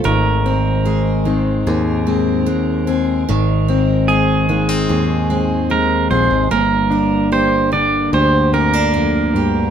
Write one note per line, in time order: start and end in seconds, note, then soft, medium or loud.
0.00 3.27 D#3 medium
0.00 0.13 A3 medium
0.00 0.45 C4 medium
0.00 0.12 F4 medium
0.04 1.63 G#1 medium
0.04 2.47 G#2 medium
0.04 4.21 A#4 medium
0.46 2.05 C4 medium
0.46 1.27 C4 medium
0.85 2.07 G#3 medium
0.85 1.65 G#4 medium
1.25 3.23 D#3 medium
1.25 2.45 G#3 medium
1.25 2.87 C4 medium
1.67 3.25 D#2 loud
1.67 2.86 G#4 medium
2.07 3.24 G#3 medium
2.07 3.67 C4 medium
2.46 3.24 D#2 medium
2.46 4.48 G#3 medium
2.87 3.24 C4 medium
2.87 4.07 G#4 medium
3.29 4.86 G#1 medium
3.29 5.71 G#2 medium
3.29 6.52 D#3 medium
3.68 5.29 C4 medium
3.68 4.49 C4 medium
4.08 5.29 G#3 medium
4.08 5.75 G#4 loud
4.08 4.88 G#4 medium
4.49 6.47 D#3 medium
4.49 5.69 G#3 medium
4.49 4.69 A#3 medium
4.69 6.10 C4 medium
4.89 6.07 D#2 medium
4.89 6.09 G#4 medium
5.30 6.47 G#3 medium
5.30 6.59 C4 medium
5.70 6.47 D#2 medium
5.70 6.51 G#3 medium
5.70 6.10 A#4 loud
6.11 6.29 A#1 medium
6.11 6.47 C4 medium
6.11 6.59 G#4 medium
6.11 6.51 C5 medium
6.31 6.49 G#1 medium
6.50 8.09 G1 medium
6.50 9.32 G2 medium
6.50 7.70 A#3 medium
6.50 7.32 A#4 loud
6.90 7.72 D4 medium
6.90 8.53 D4 medium
7.32 8.52 A#3 medium
7.32 8.12 G4 medium
7.32 7.72 C5 loud
7.72 9.70 D3 medium
7.72 8.92 A#3 medium
7.72 9.70 D4 medium
7.72 8.10 D5 loud
8.13 9.70 D2 loud
8.13 9.34 G4 medium
8.13 8.55 C5 loud
8.53 9.70 A#3 medium
8.53 8.73 C4 medium
8.53 9.70 A#4 loud
8.73 9.70 D4 medium
8.93 9.34 F2 medium
8.93 9.70 A#3 medium
9.33 9.70 G2 medium
9.33 9.70 G4 medium